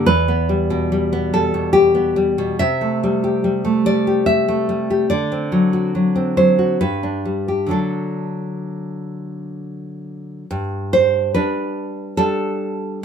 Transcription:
0, 0, Header, 1, 2, 480
1, 0, Start_track
1, 0, Key_signature, 1, "major"
1, 0, Tempo, 829876
1, 39, Time_signature, 3, 2, 24, 8
1, 998, Tempo, 846262
1, 3878, Tempo, 924499
1, 5798, Tempo, 846262
1, 7243, End_track
2, 0, Start_track
2, 0, Title_t, "Nylon-string guitar"
2, 0, Program_c, 0, 24
2, 37, Note_on_c, 0, 71, 92
2, 42, Note_on_c, 0, 40, 60
2, 164, Note_on_c, 0, 59, 52
2, 284, Note_on_c, 0, 55, 56
2, 407, Note_on_c, 0, 47, 51
2, 524, Note_off_c, 0, 55, 0
2, 531, Note_on_c, 0, 55, 55
2, 644, Note_off_c, 0, 59, 0
2, 651, Note_on_c, 0, 59, 60
2, 737, Note_off_c, 0, 71, 0
2, 766, Note_off_c, 0, 55, 0
2, 772, Note_on_c, 0, 55, 51
2, 773, Note_on_c, 0, 69, 77
2, 884, Note_off_c, 0, 47, 0
2, 891, Note_on_c, 0, 47, 49
2, 993, Note_off_c, 0, 69, 0
2, 999, Note_on_c, 0, 67, 85
2, 1117, Note_off_c, 0, 59, 0
2, 1123, Note_on_c, 0, 59, 51
2, 1239, Note_off_c, 0, 55, 0
2, 1245, Note_on_c, 0, 55, 57
2, 1364, Note_off_c, 0, 47, 0
2, 1370, Note_on_c, 0, 47, 53
2, 1469, Note_off_c, 0, 40, 0
2, 1471, Note_off_c, 0, 67, 0
2, 1490, Note_on_c, 0, 76, 93
2, 1492, Note_off_c, 0, 47, 0
2, 1492, Note_off_c, 0, 55, 0
2, 1493, Note_off_c, 0, 59, 0
2, 1496, Note_on_c, 0, 48, 63
2, 1614, Note_on_c, 0, 57, 47
2, 1740, Note_on_c, 0, 55, 54
2, 1856, Note_on_c, 0, 67, 52
2, 1964, Note_off_c, 0, 55, 0
2, 1971, Note_on_c, 0, 55, 48
2, 2080, Note_off_c, 0, 57, 0
2, 2087, Note_on_c, 0, 57, 51
2, 2179, Note_off_c, 0, 76, 0
2, 2204, Note_off_c, 0, 55, 0
2, 2209, Note_on_c, 0, 74, 90
2, 2211, Note_on_c, 0, 55, 44
2, 2322, Note_off_c, 0, 67, 0
2, 2329, Note_on_c, 0, 67, 54
2, 2433, Note_off_c, 0, 74, 0
2, 2436, Note_on_c, 0, 76, 83
2, 2556, Note_off_c, 0, 57, 0
2, 2562, Note_on_c, 0, 57, 52
2, 2672, Note_off_c, 0, 55, 0
2, 2679, Note_on_c, 0, 55, 50
2, 2794, Note_off_c, 0, 67, 0
2, 2801, Note_on_c, 0, 67, 55
2, 2894, Note_off_c, 0, 76, 0
2, 2895, Note_off_c, 0, 48, 0
2, 2910, Note_on_c, 0, 74, 80
2, 2913, Note_off_c, 0, 57, 0
2, 2915, Note_off_c, 0, 55, 0
2, 2915, Note_on_c, 0, 50, 57
2, 2917, Note_off_c, 0, 67, 0
2, 3035, Note_on_c, 0, 60, 49
2, 3150, Note_on_c, 0, 54, 51
2, 3270, Note_on_c, 0, 66, 43
2, 3387, Note_off_c, 0, 54, 0
2, 3393, Note_on_c, 0, 54, 46
2, 3504, Note_off_c, 0, 60, 0
2, 3511, Note_on_c, 0, 60, 45
2, 3609, Note_off_c, 0, 74, 0
2, 3626, Note_off_c, 0, 54, 0
2, 3632, Note_on_c, 0, 54, 43
2, 3633, Note_on_c, 0, 72, 72
2, 3748, Note_off_c, 0, 66, 0
2, 3755, Note_on_c, 0, 66, 38
2, 3856, Note_off_c, 0, 50, 0
2, 3868, Note_off_c, 0, 72, 0
2, 3878, Note_off_c, 0, 54, 0
2, 3878, Note_off_c, 0, 60, 0
2, 3878, Note_off_c, 0, 66, 0
2, 3880, Note_on_c, 0, 43, 61
2, 3880, Note_on_c, 0, 71, 78
2, 3997, Note_on_c, 0, 62, 40
2, 4112, Note_on_c, 0, 55, 38
2, 4229, Note_off_c, 0, 71, 0
2, 4231, Note_on_c, 0, 67, 43
2, 4325, Note_on_c, 0, 50, 42
2, 4336, Note_on_c, 0, 54, 35
2, 4337, Note_off_c, 0, 43, 0
2, 4338, Note_off_c, 0, 62, 0
2, 4344, Note_on_c, 0, 62, 33
2, 4347, Note_off_c, 0, 67, 0
2, 4349, Note_on_c, 0, 69, 56
2, 4351, Note_off_c, 0, 55, 0
2, 5543, Note_off_c, 0, 69, 0
2, 5764, Note_off_c, 0, 50, 0
2, 5770, Note_off_c, 0, 54, 0
2, 5774, Note_off_c, 0, 62, 0
2, 5801, Note_on_c, 0, 43, 66
2, 6042, Note_on_c, 0, 72, 86
2, 6267, Note_off_c, 0, 43, 0
2, 6271, Note_off_c, 0, 72, 0
2, 6277, Note_on_c, 0, 71, 72
2, 6280, Note_on_c, 0, 55, 43
2, 6283, Note_on_c, 0, 62, 49
2, 6729, Note_off_c, 0, 71, 0
2, 6742, Note_off_c, 0, 55, 0
2, 6746, Note_off_c, 0, 62, 0
2, 6747, Note_on_c, 0, 69, 87
2, 6749, Note_on_c, 0, 55, 52
2, 6753, Note_on_c, 0, 62, 55
2, 7214, Note_off_c, 0, 55, 0
2, 7216, Note_off_c, 0, 62, 0
2, 7216, Note_off_c, 0, 69, 0
2, 7243, End_track
0, 0, End_of_file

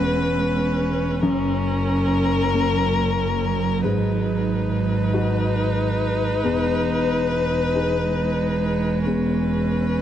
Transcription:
0, 0, Header, 1, 6, 480
1, 0, Start_track
1, 0, Key_signature, 5, "minor"
1, 0, Tempo, 869565
1, 680, Time_signature, 6, 3, 24, 8
1, 3552, Tempo, 878477
1, 5509, End_track
2, 0, Start_track
2, 0, Title_t, "Violin"
2, 0, Program_c, 0, 40
2, 0, Note_on_c, 0, 71, 78
2, 657, Note_off_c, 0, 71, 0
2, 685, Note_on_c, 0, 70, 78
2, 2099, Note_off_c, 0, 70, 0
2, 2122, Note_on_c, 0, 71, 73
2, 4964, Note_off_c, 0, 71, 0
2, 4990, Note_on_c, 0, 71, 55
2, 5509, Note_off_c, 0, 71, 0
2, 5509, End_track
3, 0, Start_track
3, 0, Title_t, "Viola"
3, 0, Program_c, 1, 41
3, 0, Note_on_c, 1, 61, 85
3, 2097, Note_off_c, 1, 61, 0
3, 2120, Note_on_c, 1, 63, 80
3, 4963, Note_off_c, 1, 63, 0
3, 4981, Note_on_c, 1, 61, 56
3, 5509, Note_off_c, 1, 61, 0
3, 5509, End_track
4, 0, Start_track
4, 0, Title_t, "Felt piano"
4, 0, Program_c, 2, 0
4, 0, Control_c, 2, 64, 127
4, 0, Note_on_c, 2, 40, 71
4, 0, Note_on_c, 2, 59, 50
4, 0, Note_on_c, 2, 61, 54
4, 657, Note_off_c, 2, 40, 0
4, 658, Note_off_c, 2, 59, 0
4, 659, Note_off_c, 2, 61, 0
4, 677, Note_on_c, 2, 42, 74
4, 690, Control_c, 2, 64, 0
4, 763, Control_c, 2, 64, 127
4, 1401, Note_on_c, 2, 58, 44
4, 1402, Note_on_c, 2, 61, 49
4, 2094, Note_off_c, 2, 42, 0
4, 2096, Note_off_c, 2, 58, 0
4, 2097, Note_off_c, 2, 61, 0
4, 2118, Note_on_c, 2, 44, 61
4, 2128, Control_c, 2, 64, 0
4, 2210, Control_c, 2, 64, 127
4, 2834, Note_on_c, 2, 63, 51
4, 2837, Note_on_c, 2, 66, 51
4, 3529, Note_off_c, 2, 44, 0
4, 3530, Note_off_c, 2, 63, 0
4, 3531, Note_off_c, 2, 66, 0
4, 3554, Note_on_c, 2, 40, 66
4, 3561, Control_c, 2, 64, 0
4, 3644, Control_c, 2, 64, 127
4, 4269, Note_on_c, 2, 63, 39
4, 4272, Note_on_c, 2, 68, 44
4, 4962, Note_off_c, 2, 63, 0
4, 4963, Note_off_c, 2, 40, 0
4, 4964, Note_off_c, 2, 68, 0
4, 4986, Note_on_c, 2, 40, 50
4, 4995, Control_c, 2, 64, 0
4, 5071, Control_c, 2, 64, 127
4, 5509, Note_off_c, 2, 40, 0
4, 5509, End_track
5, 0, Start_track
5, 0, Title_t, "Cello"
5, 0, Program_c, 3, 42
5, 0, Note_on_c, 3, 56, 72
5, 655, Note_off_c, 3, 56, 0
5, 679, Note_on_c, 3, 54, 82
5, 3529, Note_off_c, 3, 54, 0
5, 3552, Note_on_c, 3, 56, 70
5, 5509, Note_off_c, 3, 56, 0
5, 5509, End_track
6, 0, Start_track
6, 0, Title_t, "Double bass"
6, 0, Program_c, 4, 43
6, 0, Note_on_c, 4, 28, 77
6, 682, Note_on_c, 4, 30, 78
6, 691, Note_off_c, 4, 28, 0
6, 2117, Note_on_c, 4, 32, 76
6, 2125, Note_off_c, 4, 30, 0
6, 3550, Note_on_c, 4, 28, 69
6, 3558, Note_off_c, 4, 32, 0
6, 5509, Note_off_c, 4, 28, 0
6, 5509, End_track
0, 0, End_of_file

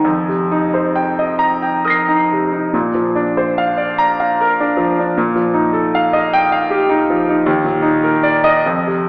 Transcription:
0, 0, Header, 1, 2, 480
1, 0, Start_track
1, 0, Tempo, 898204
1, 21, Time_signature, 6, 3, 24, 8
1, 1461, Tempo, 834492
1, 1941, Tempo, 817439
1, 2421, Tempo, 769231
1, 4821, Tempo, 840336
1, 5309, End_track
2, 0, Start_track
2, 0, Title_t, "Grand piano"
2, 0, Program_c, 0, 0
2, 0, Control_c, 0, 64, 127
2, 24, Note_on_c, 0, 41, 58
2, 33, Control_c, 0, 64, 0
2, 150, Control_c, 0, 64, 127
2, 150, Note_on_c, 0, 48, 43
2, 275, Note_on_c, 0, 63, 47
2, 341, Note_off_c, 0, 48, 0
2, 394, Note_on_c, 0, 72, 46
2, 464, Note_off_c, 0, 63, 0
2, 510, Note_on_c, 0, 79, 50
2, 583, Note_off_c, 0, 72, 0
2, 635, Note_on_c, 0, 75, 48
2, 701, Note_off_c, 0, 79, 0
2, 742, Note_on_c, 0, 82, 68
2, 822, Note_off_c, 0, 75, 0
2, 867, Note_on_c, 0, 79, 44
2, 936, Note_off_c, 0, 82, 0
2, 986, Note_on_c, 0, 70, 46
2, 986, Note_on_c, 0, 87, 40
2, 1003, Note_on_c, 0, 94, 37
2, 1015, Note_on_c, 0, 96, 35
2, 1060, Note_off_c, 0, 79, 0
2, 1115, Note_on_c, 0, 63, 40
2, 1180, Note_off_c, 0, 70, 0
2, 1241, Note_on_c, 0, 48, 44
2, 1304, Note_off_c, 0, 63, 0
2, 1349, Note_on_c, 0, 63, 44
2, 1423, Note_off_c, 0, 48, 0
2, 1440, Note_off_c, 0, 87, 0
2, 1442, Note_off_c, 0, 41, 0
2, 1449, Note_off_c, 0, 94, 0
2, 1455, Note_off_c, 0, 96, 0
2, 1461, Note_on_c, 0, 46, 57
2, 1463, Note_off_c, 0, 63, 0
2, 1473, Control_c, 0, 64, 0
2, 1554, Control_c, 0, 64, 127
2, 1582, Note_on_c, 0, 53, 41
2, 1703, Note_on_c, 0, 62, 47
2, 1775, Note_off_c, 0, 53, 0
2, 1828, Note_on_c, 0, 72, 46
2, 1894, Note_off_c, 0, 62, 0
2, 1947, Note_on_c, 0, 77, 54
2, 2017, Note_off_c, 0, 72, 0
2, 2061, Note_on_c, 0, 74, 50
2, 2138, Note_off_c, 0, 77, 0
2, 2185, Note_on_c, 0, 82, 74
2, 2255, Note_off_c, 0, 74, 0
2, 2311, Note_on_c, 0, 77, 49
2, 2376, Note_off_c, 0, 82, 0
2, 2433, Note_on_c, 0, 70, 52
2, 2501, Note_off_c, 0, 77, 0
2, 2556, Note_on_c, 0, 62, 50
2, 2625, Note_off_c, 0, 70, 0
2, 2661, Note_on_c, 0, 53, 49
2, 2745, Note_off_c, 0, 62, 0
2, 2799, Note_on_c, 0, 62, 49
2, 2856, Note_off_c, 0, 53, 0
2, 2881, Note_off_c, 0, 46, 0
2, 2912, Note_off_c, 0, 62, 0
2, 2913, Note_on_c, 0, 46, 62
2, 2918, Control_c, 0, 64, 0
2, 3016, Control_c, 0, 64, 127
2, 3026, Note_on_c, 0, 53, 45
2, 3140, Note_on_c, 0, 63, 51
2, 3215, Note_off_c, 0, 53, 0
2, 3260, Note_on_c, 0, 69, 52
2, 3334, Note_off_c, 0, 63, 0
2, 3395, Note_on_c, 0, 77, 61
2, 3457, Note_off_c, 0, 69, 0
2, 3511, Note_on_c, 0, 75, 57
2, 3589, Note_off_c, 0, 77, 0
2, 3637, Note_on_c, 0, 79, 77
2, 3709, Note_off_c, 0, 75, 0
2, 3753, Note_on_c, 0, 77, 57
2, 3830, Note_off_c, 0, 79, 0
2, 3867, Note_on_c, 0, 67, 57
2, 3945, Note_off_c, 0, 77, 0
2, 3986, Note_on_c, 0, 63, 53
2, 4060, Note_off_c, 0, 67, 0
2, 4114, Note_on_c, 0, 53, 52
2, 4178, Note_off_c, 0, 63, 0
2, 4232, Note_on_c, 0, 63, 51
2, 4300, Note_off_c, 0, 53, 0
2, 4323, Note_off_c, 0, 46, 0
2, 4340, Note_on_c, 0, 39, 68
2, 4347, Note_off_c, 0, 63, 0
2, 4357, Control_c, 0, 64, 0
2, 4441, Control_c, 0, 64, 127
2, 4452, Note_on_c, 0, 46, 46
2, 4564, Note_on_c, 0, 63, 57
2, 4645, Note_off_c, 0, 46, 0
2, 4697, Note_on_c, 0, 70, 55
2, 4764, Note_off_c, 0, 63, 0
2, 4821, Note_on_c, 0, 74, 60
2, 4889, Note_off_c, 0, 70, 0
2, 4939, Note_on_c, 0, 75, 73
2, 5008, Note_off_c, 0, 74, 0
2, 5033, Note_off_c, 0, 39, 0
2, 5057, Note_off_c, 0, 75, 0
2, 5065, Note_on_c, 0, 41, 63
2, 5066, Control_c, 0, 64, 0
2, 5182, Note_on_c, 0, 48, 49
2, 5184, Control_c, 0, 64, 127
2, 5309, Note_off_c, 0, 41, 0
2, 5309, Note_off_c, 0, 48, 0
2, 5309, End_track
0, 0, End_of_file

